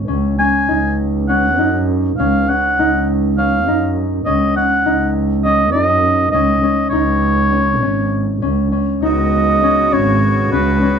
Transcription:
0.00 0.68 D#4 medium
0.08 0.34 C#2 medium
0.08 0.39 C#4 medium
0.39 1.29 C#4 medium
0.39 0.95 G#5 medium
0.68 1.59 C#2 medium
0.68 1.58 D#4 medium
1.28 2.19 C#4 medium
1.28 1.85 F#5 medium
1.58 2.09 F#2 medium
1.58 2.79 D#4 medium
2.18 2.44 C#2 medium
2.18 2.48 C#4 medium
2.18 2.50 F5 medium
2.49 3.38 C#4 medium
2.49 3.08 F#5 loud
2.78 3.68 C#2 medium
2.78 3.67 D#4 medium
3.38 4.26 C#4 medium
3.38 3.93 F5 medium
3.67 4.16 F#2 medium
3.67 4.85 D#4 medium
4.26 4.51 C#2 medium
4.26 4.56 C#4 medium
4.26 4.53 D#5 medium
4.56 5.45 C#4 medium
4.56 5.11 F#5 medium
4.85 5.76 C#2 medium
4.85 5.74 D#4 medium
5.44 6.33 C#4 medium
5.44 5.71 D#5 medium
5.72 6.24 F#2 medium
5.72 6.92 D#4 medium
5.72 6.28 D#5 medium
6.31 6.58 C#2 medium
6.31 6.62 C#4 medium
6.31 6.87 D#5 medium
6.63 7.52 C#4 medium
6.90 7.83 C#2 medium
6.90 9.02 D#4 medium
6.90 8.37 C#5 medium
7.52 7.82 C#4 medium
7.81 8.33 G#1 medium
7.81 8.42 C#4 medium
8.42 8.68 C#2 medium
8.42 8.72 C#4 medium
8.72 9.63 C#4 medium
9.02 9.78 C#2 medium
9.02 10.99 C#3 medium
9.02 10.99 B3 medium
9.02 10.99 D#4 medium
9.02 10.99 F#4 medium
9.02 9.94 D#5 medium
9.63 9.92 C#4 medium
9.92 10.43 G#1 medium
9.92 10.52 C#4 medium
9.92 10.52 C#5 medium
10.51 10.99 C#2 medium
10.51 10.82 C#4 medium
10.51 10.99 B4 medium
10.83 10.99 C#4 medium

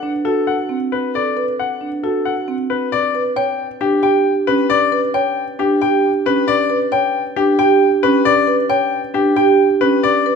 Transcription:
0.03 0.32 D4 medium
0.25 0.54 F#4 medium
0.25 0.54 A4 medium
0.47 0.76 F#5 medium
0.69 0.99 C4 medium
0.92 1.21 B4 medium
1.14 1.43 A4 medium
1.14 1.44 D5 medium
1.37 1.65 B4 medium
1.59 1.88 F#5 medium
1.81 2.10 D4 soft
2.03 2.32 F#4 medium
2.03 2.32 A4 soft
2.25 2.54 F#5 medium
2.48 2.77 C4 medium
2.70 2.99 B4 medium
2.92 3.21 D5 medium
3.15 3.43 B4 medium
3.36 3.65 C#5 medium
3.36 3.65 G5 medium
3.81 4.10 D4 medium
3.81 4.10 G4 medium
4.03 4.32 G4 medium
4.03 4.32 G5 medium
4.47 4.77 C#4 medium
4.47 4.76 B4 medium
4.70 4.99 D5 medium
4.92 5.21 B4 medium
5.14 5.43 C#5 medium
5.14 5.43 G5 medium
5.59 5.88 D4 medium
5.59 5.88 G4 medium
5.81 6.10 G4 medium
5.81 6.10 G5 medium
6.26 6.54 C#4 medium
6.26 6.55 B4 medium
6.48 6.77 D5 medium
6.70 6.99 B4 medium
6.92 7.21 C#5 medium
6.92 7.21 G5 medium
7.36 7.65 D4 medium
7.36 7.65 G4 medium
7.59 7.88 G4 medium
7.59 7.88 G5 medium
8.03 8.32 C#4 medium
8.03 8.32 B4 medium
8.25 8.54 D5 medium
8.47 8.76 B4 medium
8.70 8.99 C#5 medium
8.70 8.99 G5 medium
9.14 9.43 D4 medium
9.14 9.43 G4 medium
9.36 9.65 G4 medium
9.36 9.65 G5 medium
9.81 10.10 C#4 medium
9.81 10.10 B4 medium
10.03 10.32 D5 medium
10.26 10.36 B4 medium

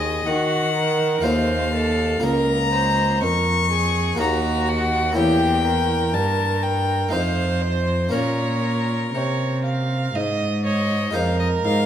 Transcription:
0.00 0.23 D#2 medium
0.00 1.19 C4 soft
0.00 0.27 G#4 medium
0.00 1.19 C5 soft
0.00 0.28 D#5 medium
0.26 1.22 D#3 medium
0.26 1.20 D#3 medium
0.26 0.73 F#4 medium
0.26 1.25 F#5 medium
0.74 1.26 A#4 medium
1.21 2.21 D#2 medium
1.21 2.19 A3 soft
1.21 2.19 F4 soft
1.21 2.20 C5 soft
1.21 1.73 C5 medium
1.21 2.25 F5 medium
1.25 2.20 D#2 medium
1.74 2.22 A4 medium
2.20 3.23 C#2 medium
2.20 4.14 A#3 soft
2.20 4.14 F4 soft
2.20 4.15 A#4 soft
2.20 2.72 A#4 medium
2.20 3.22 A#5 medium
2.24 3.18 C#2 medium
2.72 3.25 C5 medium
3.22 4.18 F2 medium
3.22 4.16 F2 medium
3.22 3.70 A#4 medium
3.22 4.18 C#6 loud
3.71 4.22 G#4 medium
4.15 5.17 D#2 medium
4.15 5.11 A#3 soft
4.15 5.12 F#4 soft
4.15 5.13 A#4 soft
4.19 5.13 D#2 soft
4.19 5.16 F#4 medium
4.19 4.70 A#5 medium
4.69 5.16 F#5 medium
5.12 6.16 E2 medium
5.12 7.07 A#3 soft
5.12 7.07 E4 soft
5.12 7.08 C#5 soft
5.16 6.11 E2 medium
5.16 5.64 G4 medium
5.16 6.16 G5 medium
5.65 7.14 A#4 medium
6.14 7.12 G2 medium
6.14 7.09 G2 soft
6.14 6.64 A5 medium
6.63 7.11 G5 medium
7.09 8.08 A3 soft
7.09 8.09 D#4 soft
7.09 8.10 C5 soft
7.09 8.13 C5 medium
7.09 7.62 F5 medium
7.13 8.11 F2 medium
7.13 8.09 F2 soft
7.61 8.12 C5 medium
8.09 11.09 A#3 soft
8.09 11.10 C#4 soft
8.09 10.14 A#4 medium
8.09 11.11 A#4 soft
8.13 9.13 A#2 medium
8.13 9.11 A#2 soft
8.13 9.03 C#5 medium
9.14 10.13 C3 medium
9.14 10.12 C3 soft
9.14 9.61 C#5 medium
9.65 10.17 F5 medium
10.15 11.13 G#2 medium
10.15 11.11 G#2 soft
10.15 10.65 D#5 medium
10.64 11.14 C#5 medium
10.64 11.16 D#5 medium
11.11 11.61 F2 medium
11.11 11.86 G#3 medium
11.11 11.86 F4 soft
11.11 11.86 A#4 medium
11.11 11.86 C5 medium
11.15 11.61 F2 medium
11.15 11.39 F5 medium
11.39 11.47 D#5 medium
11.64 11.86 G#2 medium
11.64 11.86 F5 medium

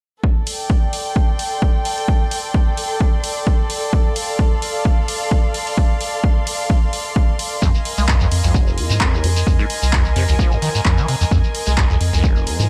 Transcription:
0.24 7.62 A4 medium
0.24 kick loud
0.45 7.62 D5 medium
0.45 open hi-hat loud
0.55 4.26 G5 medium
0.70 kick loud
0.82 12.69 C6 medium
0.93 open hi-hat loud
1.16 kick loud
1.39 open hi-hat medium
1.62 kick loud
1.85 open hi-hat loud
1.98 open hi-hat medium
2.08 kick loud
2.31 open hi-hat loud
2.54 kick loud
2.77 open hi-hat loud
3.00 kick loud
3.24 open hi-hat loud
3.47 kick loud
3.70 open hi-hat loud
3.93 kick loud
4.12 8.87 F5 medium
4.16 open hi-hat loud
4.39 kick loud
4.62 open hi-hat loud
4.85 kick loud
5.08 open hi-hat loud
5.31 kick loud
5.54 open hi-hat loud
5.67 open hi-hat medium
5.78 kick loud
6.01 open hi-hat loud
6.24 kick loud
6.47 open hi-hat loud
6.70 kick loud
6.93 open hi-hat loud
7.16 kick loud
7.39 open hi-hat loud
7.62 7.73 F2 loud
7.62 7.69 F2 loud
7.62 12.69 A#4 medium
7.62 kick loud
7.62 shekere medium
7.74 12.69 D#5 medium
7.74 12.69 G#5 medium
7.74 shekere soft
7.85 open hi-hat loud
7.98 8.29 C2 loud
7.98 8.04 G#3 medium
7.98 shekere medium
8.08 8.15 G2 medium
8.08 kick loud
8.08 clap loud
8.08 shekere medium
8.20 8.27 F2 loud
8.20 shekere soft
8.31 8.42 F2 loud
8.31 open hi-hat loud
8.44 8.53 C2 loud
8.44 8.56 F2 medium
8.44 shekere medium
8.54 8.79 F1 loud
8.54 kick loud
8.54 shekere medium
8.67 shekere soft
8.78 8.92 F2 medium
8.78 open hi-hat loud
8.90 8.99 G#2 medium
8.90 8.96 G#3 medium
8.90 shekere medium
9.01 9.15 F2 medium
9.01 kick loud
9.01 clap loud
9.01 shekere medium
9.13 9.25 D#2 loud
9.13 shekere soft
9.24 9.44 F2 medium
9.24 9.28 F3 medium
9.24 open hi-hat loud
9.36 open hi-hat medium
9.36 shekere medium
9.47 9.57 F2 loud
9.47 kick loud
9.47 shekere medium
9.59 9.65 G#2 medium
9.59 shekere soft
9.70 open hi-hat loud
9.82 10.13 C2 loud
9.82 shekere medium
9.93 10.03 F2 medium
9.93 kick loud
9.93 clap loud
9.93 shekere medium
10.05 shekere soft
10.16 10.27 F2 loud
10.16 10.23 C3 medium
10.16 open hi-hat loud
10.28 10.37 C2 loud
10.28 10.34 D#2 medium
10.28 shekere medium
10.39 10.53 F3 loud
10.39 kick loud
10.39 shekere medium
10.52 10.57 D#2 medium
10.52 shekere soft
10.62 10.69 D#3 loud
10.62 open hi-hat medium
10.75 10.81 G#2 medium
10.75 shekere medium
10.85 10.99 F2 medium
10.85 kick loud
10.85 clap loud
10.85 shekere medium
10.98 11.07 F3 medium
10.98 shekere soft
11.08 11.15 C3 medium
11.08 open hi-hat medium
11.21 11.24 F2 loud
11.21 shekere medium
11.31 11.42 F2 loud
11.31 11.38 F2 loud
11.31 kick loud
11.31 shekere medium
11.44 shekere soft
11.55 open hi-hat loud
11.66 11.98 C2 loud
11.66 11.73 G#3 medium
11.66 shekere medium
11.77 11.84 G2 medium
11.77 kick loud
11.77 clap loud
11.77 shekere medium
11.90 11.96 F2 loud
11.90 shekere soft
12.01 12.11 F2 loud
12.01 open hi-hat loud
12.13 12.22 C2 loud
12.13 12.25 F2 medium
12.13 shekere medium
12.24 12.48 F1 loud
12.24 kick loud
12.24 shekere medium
12.36 shekere soft
12.47 12.61 F2 medium
12.47 open hi-hat loud
12.59 12.68 G#2 loud
12.59 12.65 G#3 medium
12.59 shekere medium

